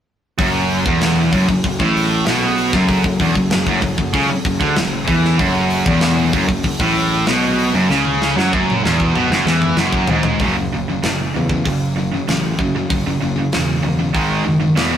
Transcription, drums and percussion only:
0.39 kick, open hi-hat
0.70 open hi-hat
0.86 kick
1.01 snare, open hi-hat
1.33 kick, open hi-hat
1.49 kick
1.64 kick, open hi-hat
1.80 kick
1.97 open hi-hat
2.26 snare, open hi-hat
2.57 open hi-hat
2.73 kick, snare
2.88 kick, open hi-hat
3.04 kick
3.20 kick, open hi-hat
3.35 kick
3.50 snare, open hi-hat
3.67 kick
3.81 kick, open hi-hat
3.98 kick
4.13 kick, open hi-hat
4.45 kick, open hi-hat
4.61 kick
4.76 snare, open hi-hat
5.08 kick, open hi-hat
5.25 snare
5.39 kick, open hi-hat
5.70 open hi-hat
5.86 kick
6.01 snare, open hi-hat
6.33 kick, open hi-hat
6.49 kick
6.63 kick, open hi-hat
6.80 kick
6.96 open hi-hat
7.27 snare, open hi-hat
7.59 open hi-hat
7.91 snare
8.05 high tom
8.22 snare
8.39 snare
8.53 kick
8.70 mid tom
8.85 snare
9.00 kick
9.16 mid tom
9.32 snare
9.47 snare
9.62 mid tom
9.77 snare
9.93 kick
10.07 floor tom
10.23 floor tom
10.39 kick, open hi-hat
11.03 snare, open hi-hat
11.49 kick
11.65 kick, open hi-hat
12.28 snare, open hi-hat
12.59 kick
12.90 kick, open hi-hat
13.52 snare, open hi-hat
14.14 kick, open hi-hat
14.77 snare, open hi-hat

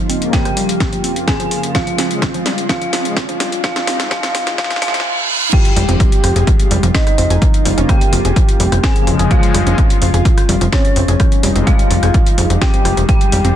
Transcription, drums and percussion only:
0.10 open hi-hat
0.22 closed hi-hat
0.33 kick, snare, closed hi-hat
0.45 cross-stick, closed hi-hat
0.57 open hi-hat
0.69 closed hi-hat
0.80 kick, snare, closed hi-hat
0.93 closed hi-hat
1.04 open hi-hat
1.16 closed hi-hat
1.28 kick, cross-stick, snare, closed hi-hat
1.40 closed hi-hat
1.51 open hi-hat
1.63 closed hi-hat
1.75 kick, snare, closed hi-hat
1.87 closed hi-hat
1.98 snare, open hi-hat
2.11 closed hi-hat
2.22 kick, snare, closed hi-hat
2.34 closed hi-hat
2.46 snare, open hi-hat
2.58 closed hi-hat
2.69 kick, snare, closed hi-hat
2.82 closed hi-hat
2.93 snare, open hi-hat
3.05 closed hi-hat
3.17 kick, snare, closed hi-hat
3.29 closed hi-hat
3.40 snare, open hi-hat
3.52 closed hi-hat
3.64 kick, snare, closed hi-hat
3.76 snare, closed hi-hat
3.87 snare, open hi-hat
4.00 snare, closed hi-hat
4.11 kick, snare, closed hi-hat
4.23 snare, closed hi-hat
4.35 snare, open hi-hat
4.47 snare, closed hi-hat
4.58 kick, snare, closed hi-hat
4.64 snare
4.71 snare, closed hi-hat
4.76 snare
4.82 snare, open hi-hat
4.88 snare
4.94 snare, closed hi-hat
5.00 snare
5.53 kick, closed hi-hat, crash
5.65 closed hi-hat
5.76 open hi-hat
5.89 closed hi-hat
6.00 kick, closed hi-hat
6.12 closed hi-hat
6.24 cross-stick, open hi-hat
6.36 closed hi-hat
6.47 kick, closed hi-hat
6.60 closed hi-hat
6.71 open hi-hat
6.83 closed hi-hat
6.95 kick, snare, closed hi-hat
7.07 cross-stick, closed hi-hat
7.18 open hi-hat
7.30 closed hi-hat
7.42 kick, closed hi-hat
7.54 closed hi-hat
7.65 open hi-hat
7.78 closed hi-hat
7.89 kick, cross-stick, closed hi-hat
8.01 closed hi-hat
8.13 open hi-hat
8.25 closed hi-hat
8.36 kick, closed hi-hat
8.49 closed hi-hat
8.60 open hi-hat
8.72 cross-stick, closed hi-hat
8.84 kick, snare, closed hi-hat
8.96 closed hi-hat
9.07 open hi-hat
9.19 closed hi-hat
9.31 kick, closed hi-hat
9.43 closed hi-hat
9.54 cross-stick, open hi-hat
9.67 closed hi-hat
9.78 kick, closed hi-hat
9.90 closed hi-hat
10.02 open hi-hat
10.14 closed hi-hat
10.25 kick, closed hi-hat
10.38 cross-stick, closed hi-hat
10.49 open hi-hat
10.61 closed hi-hat
10.72 kick, snare, closed hi-hat
10.85 closed hi-hat
10.96 open hi-hat
11.08 closed hi-hat
11.20 kick, cross-stick, closed hi-hat
11.32 closed hi-hat
11.43 open hi-hat
11.56 closed hi-hat
11.67 kick, closed hi-hat
11.79 closed hi-hat
11.91 open hi-hat
12.03 cross-stick, closed hi-hat
12.14 kick, closed hi-hat
12.27 closed hi-hat
12.38 open hi-hat
12.50 closed hi-hat
12.61 kick, snare, closed hi-hat
12.74 closed hi-hat
12.85 cross-stick, open hi-hat
12.97 closed hi-hat
13.09 kick, closed hi-hat
13.21 closed hi-hat
13.32 open hi-hat
13.45 closed hi-hat

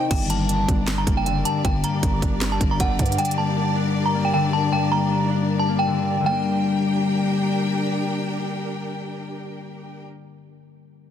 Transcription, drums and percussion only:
0.11 kick, closed hi-hat, crash
0.30 closed hi-hat
0.49 closed hi-hat
0.68 kick, closed hi-hat
0.88 snare, clap, closed hi-hat
1.07 kick, closed hi-hat
1.26 closed hi-hat
1.45 closed hi-hat
1.65 kick, closed hi-hat
1.84 closed hi-hat
2.03 kick, closed hi-hat
2.22 kick, closed hi-hat
2.41 snare, clap, closed hi-hat
2.61 kick, closed hi-hat
2.80 kick, closed hi-hat
2.99 kick, closed hi-hat
3.06 closed hi-hat
3.12 closed hi-hat
3.18 closed hi-hat
3.25 closed hi-hat
3.31 closed hi-hat

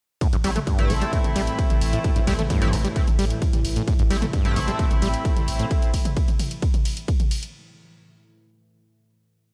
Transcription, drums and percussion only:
0.21 kick, closed hi-hat, ride
0.33 closed hi-hat, ride
0.44 open hi-hat, ride
0.56 closed hi-hat, mid tom, ride
0.67 kick, closed hi-hat, ride
0.79 closed hi-hat, mid tom, ride
0.90 open hi-hat, mid tom, ride
1.02 closed hi-hat, ride
1.13 kick, closed hi-hat, ride
1.24 closed hi-hat, mid tom, ride
1.36 open hi-hat, ride
1.47 closed hi-hat, ride
1.59 kick, closed hi-hat, ride
1.70 closed hi-hat, mid tom, ride
1.81 open hi-hat, ride
1.93 closed hi-hat, ride
2.04 kick, closed hi-hat, ride
2.16 closed hi-hat, ride
2.27 kick, open hi-hat, ride
2.39 closed hi-hat, mid tom, ride
2.50 kick, closed hi-hat, ride
2.62 closed hi-hat, mid tom, ride
2.73 open hi-hat, mid tom, ride
2.85 closed hi-hat, ride
2.96 kick, closed hi-hat, ride
3.08 closed hi-hat, mid tom, ride
3.19 open hi-hat, ride
3.30 closed hi-hat, ride
3.42 kick, closed hi-hat, ride
3.53 closed hi-hat, mid tom, ride
3.65 open hi-hat, ride
3.76 closed hi-hat, ride
3.88 kick, closed hi-hat, ride
3.99 closed hi-hat, ride
4.10 open hi-hat, ride
4.22 closed hi-hat, mid tom, ride
4.33 kick, closed hi-hat, ride
4.45 closed hi-hat, mid tom, ride
4.56 open hi-hat, mid tom, ride
4.68 closed hi-hat, ride
4.79 kick, closed hi-hat, ride
4.91 closed hi-hat, mid tom, ride
5.02 open hi-hat, ride
5.14 closed hi-hat, ride
5.25 kick, closed hi-hat, ride
5.37 closed hi-hat, mid tom, ride
5.48 open hi-hat, ride
5.59 closed hi-hat, ride
5.71 kick, closed hi-hat, ride
5.82 closed hi-hat, ride
5.94 kick, open hi-hat, ride
6.05 closed hi-hat, mid tom, ride
6.17 kick, closed hi-hat, ride
6.28 closed hi-hat, mid tom, ride
6.39 open hi-hat, mid tom, ride
6.51 closed hi-hat, ride
6.62 kick, closed hi-hat, ride
6.74 closed hi-hat, mid tom, ride
6.85 open hi-hat, ride
6.97 closed hi-hat, ride
7.08 kick, closed hi-hat, ride
7.20 closed hi-hat, mid tom, ride
7.31 open hi-hat, ride
7.43 closed hi-hat, ride

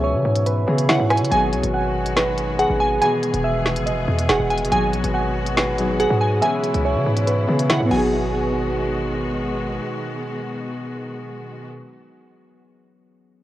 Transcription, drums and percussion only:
0.36 closed hi-hat
0.46 closed hi-hat
0.78 closed hi-hat
0.89 snare
1.10 cross-stick, closed hi-hat
1.17 closed hi-hat
1.24 closed hi-hat
1.32 closed hi-hat
1.53 closed hi-hat
1.63 closed hi-hat
2.06 closed hi-hat
2.17 snare
2.38 closed hi-hat
2.59 closed hi-hat
3.02 closed hi-hat
3.23 closed hi-hat
3.34 closed hi-hat
3.66 snare
3.76 closed hi-hat
3.87 closed hi-hat
4.19 closed hi-hat
4.29 snare
4.51 closed hi-hat
4.58 closed hi-hat
4.65 closed hi-hat
4.72 closed hi-hat
4.93 closed hi-hat
5.04 closed hi-hat
5.46 closed hi-hat
5.57 snare
5.78 closed hi-hat
6.00 closed hi-hat
6.42 closed hi-hat
6.63 closed hi-hat
6.74 closed hi-hat
7.16 closed hi-hat
7.27 closed hi-hat
7.59 closed hi-hat
7.70 snare
7.91 crash

